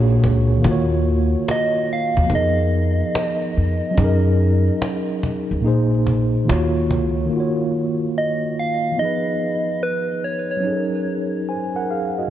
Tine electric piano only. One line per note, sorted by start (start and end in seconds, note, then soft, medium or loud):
0.00 0.64 A#2 medium
0.00 0.60 A#3 medium
0.00 0.65 D4 medium
0.00 0.66 F#4 medium
0.00 0.67 G#4 medium
0.00 0.67 C#5 medium
0.58 2.25 D#3 medium
0.58 2.27 A#3 medium
0.65 2.28 F4 medium
0.65 2.30 F#4 medium
0.71 2.32 C#5 medium
2.23 3.91 F3 medium
2.23 3.92 B3 medium
2.29 3.94 D#4 medium
2.29 3.96 G#4 medium
2.36 3.97 A#4 medium
3.91 5.58 F#3 medium
3.91 5.60 C#4 medium
3.98 5.61 D#4 medium
3.98 5.63 G#4 medium
4.04 5.65 A#4 medium
5.61 6.46 A#2 medium
5.61 6.46 A#3 medium
5.61 6.48 D#4 medium
5.66 6.49 G#4 medium
5.66 6.50 C5 medium
6.45 7.25 D#3 medium
6.45 7.28 A#3 medium
6.45 7.32 F4 medium
6.50 7.32 F#4 medium
6.50 7.33 C#5 medium
7.26 8.92 D#3 medium
7.26 8.94 A#3 medium
7.33 8.96 F4 medium
7.33 8.98 F#4 medium
7.40 8.99 C#5 medium
8.92 9.04 E3 soft
8.92 10.60 B3 soft
8.98 10.62 F3 medium
8.98 10.62 D#4 soft
8.98 10.63 G#4 medium
9.05 10.65 B4 medium
10.57 12.24 F#3 medium
10.57 12.26 C#4 medium
10.63 12.28 D#4 medium
10.63 11.48 G#4 medium
10.70 10.76 A4 medium
10.77 11.53 A#4 medium
11.49 11.74 C5 soft
11.49 11.74 G#5 medium
11.76 11.90 A#4 medium
11.76 11.90 F#5 medium
11.91 12.16 G#4 medium
11.91 12.16 F5 medium
12.18 12.30 F#4 soft
12.18 12.30 D#5 medium